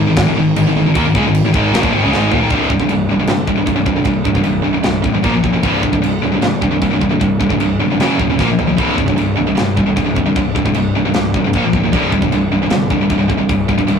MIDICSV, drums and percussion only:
0, 0, Header, 1, 2, 480
1, 0, Start_track
1, 0, Tempo, 391901
1, 1161, Time_signature, 4, 2, 24, 8
1, 17140, End_track
2, 0, Start_track
2, 0, Title_t, "Drums"
2, 201, Note_on_c, 9, 49, 59
2, 206, Note_on_c, 9, 36, 105
2, 212, Note_on_c, 9, 38, 116
2, 323, Note_off_c, 9, 49, 0
2, 328, Note_off_c, 9, 36, 0
2, 334, Note_off_c, 9, 38, 0
2, 689, Note_on_c, 9, 49, 62
2, 812, Note_off_c, 9, 49, 0
2, 1167, Note_on_c, 9, 49, 54
2, 1168, Note_on_c, 9, 36, 107
2, 1289, Note_off_c, 9, 49, 0
2, 1291, Note_off_c, 9, 36, 0
2, 1408, Note_on_c, 9, 36, 109
2, 1531, Note_off_c, 9, 36, 0
2, 1648, Note_on_c, 9, 49, 64
2, 1771, Note_off_c, 9, 49, 0
2, 1888, Note_on_c, 9, 36, 107
2, 2010, Note_off_c, 9, 36, 0
2, 2133, Note_on_c, 9, 49, 59
2, 2144, Note_on_c, 9, 38, 102
2, 2246, Note_on_c, 9, 36, 101
2, 2255, Note_off_c, 9, 49, 0
2, 2266, Note_off_c, 9, 38, 0
2, 2368, Note_off_c, 9, 36, 0
2, 2614, Note_on_c, 9, 38, 64
2, 2737, Note_off_c, 9, 38, 0
2, 2836, Note_on_c, 9, 43, 92
2, 2958, Note_off_c, 9, 43, 0
2, 3060, Note_on_c, 9, 52, 46
2, 3070, Note_on_c, 9, 36, 94
2, 3183, Note_off_c, 9, 52, 0
2, 3193, Note_off_c, 9, 36, 0
2, 3308, Note_on_c, 9, 36, 79
2, 3424, Note_off_c, 9, 36, 0
2, 3424, Note_on_c, 9, 36, 69
2, 3539, Note_on_c, 9, 52, 52
2, 3547, Note_off_c, 9, 36, 0
2, 3662, Note_off_c, 9, 52, 0
2, 4009, Note_on_c, 9, 52, 49
2, 4020, Note_on_c, 9, 38, 100
2, 4132, Note_off_c, 9, 52, 0
2, 4143, Note_off_c, 9, 38, 0
2, 4257, Note_on_c, 9, 36, 79
2, 4379, Note_off_c, 9, 36, 0
2, 4491, Note_on_c, 9, 52, 48
2, 4495, Note_on_c, 9, 36, 79
2, 4614, Note_off_c, 9, 52, 0
2, 4618, Note_off_c, 9, 36, 0
2, 4731, Note_on_c, 9, 36, 80
2, 4853, Note_off_c, 9, 36, 0
2, 4956, Note_on_c, 9, 52, 47
2, 4967, Note_on_c, 9, 36, 102
2, 5079, Note_off_c, 9, 52, 0
2, 5089, Note_off_c, 9, 36, 0
2, 5209, Note_on_c, 9, 36, 80
2, 5328, Note_off_c, 9, 36, 0
2, 5328, Note_on_c, 9, 36, 74
2, 5433, Note_on_c, 9, 52, 48
2, 5451, Note_off_c, 9, 36, 0
2, 5556, Note_off_c, 9, 52, 0
2, 5921, Note_on_c, 9, 52, 45
2, 5932, Note_on_c, 9, 38, 94
2, 6043, Note_off_c, 9, 52, 0
2, 6054, Note_off_c, 9, 38, 0
2, 6174, Note_on_c, 9, 36, 78
2, 6296, Note_off_c, 9, 36, 0
2, 6417, Note_on_c, 9, 36, 79
2, 6417, Note_on_c, 9, 52, 46
2, 6539, Note_off_c, 9, 52, 0
2, 6540, Note_off_c, 9, 36, 0
2, 6660, Note_on_c, 9, 36, 75
2, 6783, Note_off_c, 9, 36, 0
2, 6901, Note_on_c, 9, 36, 90
2, 6901, Note_on_c, 9, 52, 47
2, 7023, Note_off_c, 9, 36, 0
2, 7024, Note_off_c, 9, 52, 0
2, 7142, Note_on_c, 9, 36, 77
2, 7264, Note_off_c, 9, 36, 0
2, 7264, Note_on_c, 9, 36, 70
2, 7386, Note_off_c, 9, 36, 0
2, 7391, Note_on_c, 9, 52, 53
2, 7513, Note_off_c, 9, 52, 0
2, 7863, Note_on_c, 9, 52, 50
2, 7874, Note_on_c, 9, 38, 100
2, 7986, Note_off_c, 9, 52, 0
2, 7997, Note_off_c, 9, 38, 0
2, 8109, Note_on_c, 9, 36, 81
2, 8231, Note_off_c, 9, 36, 0
2, 8350, Note_on_c, 9, 36, 76
2, 8350, Note_on_c, 9, 52, 48
2, 8472, Note_off_c, 9, 36, 0
2, 8473, Note_off_c, 9, 52, 0
2, 8592, Note_on_c, 9, 36, 77
2, 8715, Note_off_c, 9, 36, 0
2, 8833, Note_on_c, 9, 36, 100
2, 8833, Note_on_c, 9, 52, 43
2, 8955, Note_off_c, 9, 52, 0
2, 8956, Note_off_c, 9, 36, 0
2, 9071, Note_on_c, 9, 36, 81
2, 9190, Note_off_c, 9, 36, 0
2, 9190, Note_on_c, 9, 36, 75
2, 9308, Note_on_c, 9, 52, 52
2, 9313, Note_off_c, 9, 36, 0
2, 9431, Note_off_c, 9, 52, 0
2, 9797, Note_on_c, 9, 52, 47
2, 9808, Note_on_c, 9, 38, 104
2, 9919, Note_off_c, 9, 52, 0
2, 9930, Note_off_c, 9, 38, 0
2, 10038, Note_on_c, 9, 36, 81
2, 10160, Note_off_c, 9, 36, 0
2, 10277, Note_on_c, 9, 36, 82
2, 10278, Note_on_c, 9, 38, 58
2, 10399, Note_off_c, 9, 36, 0
2, 10401, Note_off_c, 9, 38, 0
2, 10520, Note_on_c, 9, 43, 78
2, 10643, Note_off_c, 9, 43, 0
2, 10757, Note_on_c, 9, 52, 45
2, 10759, Note_on_c, 9, 36, 91
2, 10879, Note_off_c, 9, 52, 0
2, 10881, Note_off_c, 9, 36, 0
2, 11000, Note_on_c, 9, 36, 82
2, 11120, Note_off_c, 9, 36, 0
2, 11120, Note_on_c, 9, 36, 76
2, 11239, Note_on_c, 9, 52, 46
2, 11243, Note_off_c, 9, 36, 0
2, 11361, Note_off_c, 9, 52, 0
2, 11721, Note_on_c, 9, 52, 48
2, 11732, Note_on_c, 9, 38, 105
2, 11843, Note_off_c, 9, 52, 0
2, 11854, Note_off_c, 9, 38, 0
2, 11969, Note_on_c, 9, 36, 80
2, 12092, Note_off_c, 9, 36, 0
2, 12210, Note_on_c, 9, 36, 80
2, 12213, Note_on_c, 9, 52, 48
2, 12332, Note_off_c, 9, 36, 0
2, 12335, Note_off_c, 9, 52, 0
2, 12449, Note_on_c, 9, 36, 81
2, 12572, Note_off_c, 9, 36, 0
2, 12685, Note_on_c, 9, 52, 48
2, 12690, Note_on_c, 9, 36, 97
2, 12808, Note_off_c, 9, 52, 0
2, 12813, Note_off_c, 9, 36, 0
2, 12933, Note_on_c, 9, 36, 87
2, 13052, Note_off_c, 9, 36, 0
2, 13052, Note_on_c, 9, 36, 68
2, 13159, Note_on_c, 9, 52, 51
2, 13174, Note_off_c, 9, 36, 0
2, 13281, Note_off_c, 9, 52, 0
2, 13641, Note_on_c, 9, 52, 46
2, 13652, Note_on_c, 9, 38, 103
2, 13763, Note_off_c, 9, 52, 0
2, 13774, Note_off_c, 9, 38, 0
2, 13892, Note_on_c, 9, 36, 85
2, 14015, Note_off_c, 9, 36, 0
2, 14124, Note_on_c, 9, 52, 46
2, 14132, Note_on_c, 9, 36, 78
2, 14246, Note_off_c, 9, 52, 0
2, 14254, Note_off_c, 9, 36, 0
2, 14371, Note_on_c, 9, 36, 83
2, 14493, Note_off_c, 9, 36, 0
2, 14613, Note_on_c, 9, 36, 100
2, 14614, Note_on_c, 9, 52, 43
2, 14736, Note_off_c, 9, 36, 0
2, 14737, Note_off_c, 9, 52, 0
2, 14850, Note_on_c, 9, 36, 83
2, 14969, Note_off_c, 9, 36, 0
2, 14969, Note_on_c, 9, 36, 75
2, 15090, Note_on_c, 9, 52, 46
2, 15092, Note_off_c, 9, 36, 0
2, 15213, Note_off_c, 9, 52, 0
2, 15558, Note_on_c, 9, 52, 45
2, 15569, Note_on_c, 9, 38, 107
2, 15680, Note_off_c, 9, 52, 0
2, 15691, Note_off_c, 9, 38, 0
2, 15804, Note_on_c, 9, 36, 82
2, 15926, Note_off_c, 9, 36, 0
2, 16043, Note_on_c, 9, 52, 47
2, 16046, Note_on_c, 9, 36, 84
2, 16166, Note_off_c, 9, 52, 0
2, 16169, Note_off_c, 9, 36, 0
2, 16286, Note_on_c, 9, 36, 85
2, 16408, Note_off_c, 9, 36, 0
2, 16527, Note_on_c, 9, 36, 99
2, 16534, Note_on_c, 9, 52, 47
2, 16650, Note_off_c, 9, 36, 0
2, 16656, Note_off_c, 9, 52, 0
2, 16766, Note_on_c, 9, 36, 76
2, 16885, Note_off_c, 9, 36, 0
2, 16885, Note_on_c, 9, 36, 76
2, 17001, Note_on_c, 9, 52, 51
2, 17007, Note_off_c, 9, 36, 0
2, 17124, Note_off_c, 9, 52, 0
2, 17140, End_track
0, 0, End_of_file